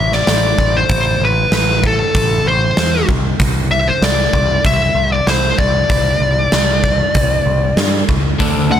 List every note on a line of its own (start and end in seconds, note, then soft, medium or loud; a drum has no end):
0.00 0.21 A1 medium
0.00 0.14 E5 medium
0.12 0.77 D5 medium
0.12 snare soft
0.27 0.52 A1 medium
0.27 snare loud
0.27 open hi-hat soft
0.58 0.83 A1 medium
0.58 kick medium
0.77 1.24 C5 medium
0.89 1.15 A1 medium
0.89 kick loud
0.89 open hi-hat soft
1.20 1.45 A1 medium
1.25 1.81 B4 medium
1.52 2.02 A1 medium
1.52 snare medium
1.52 open hi-hat soft
1.84 2.48 A4 medium
1.84 kick medium
2.15 2.40 A1 medium
2.15 kick medium
2.15 open hi-hat soft
2.45 2.70 A1 medium
2.45 3.06 C5 medium
2.77 3.02 E2 medium
2.77 snare loud
2.77 open hi-hat soft
3.09 3.34 C2 medium
3.09 kick medium
3.40 3.90 C2 medium
3.40 kick loud
3.40 open hi-hat soft
3.71 3.87 E5 medium
3.88 4.02 C5 medium
4.02 4.27 C2 medium
4.02 4.62 D5 medium
4.02 snare medium
4.02 open hi-hat soft
4.33 4.59 C2 medium
4.33 kick medium
4.64 4.90 C2 medium
4.64 5.09 E5 medium
4.64 kick medium
4.64 open hi-hat soft
4.95 5.20 C2 medium
5.12 5.28 D5 medium
5.27 5.52 C2 medium
5.27 5.59 C5 medium
5.27 snare medium
5.27 open hi-hat soft
5.58 5.83 C2 medium
5.58 8.04 D5 medium
5.58 kick medium
5.90 6.15 C2 medium
5.90 kick loud
5.90 open hi-hat soft
6.21 6.46 C2 medium
6.52 7.02 C2 medium
6.52 snare medium
6.52 open hi-hat soft
6.84 kick medium
7.15 7.40 C2 medium
7.15 kick loud
7.15 open hi-hat soft
7.46 7.71 C2 medium
7.77 8.02 G2 medium
7.77 snare loud
7.77 open hi-hat soft
8.09 8.34 C#2 medium
8.09 kick medium
8.39 8.80 D2 medium
8.39 8.69 D3 medium
8.39 8.69 A3 medium
8.39 8.69 D4 medium
8.39 kick loud
8.39 open hi-hat soft
8.70 8.80 D3 medium
8.70 8.80 A3 medium
8.70 8.80 F#5 medium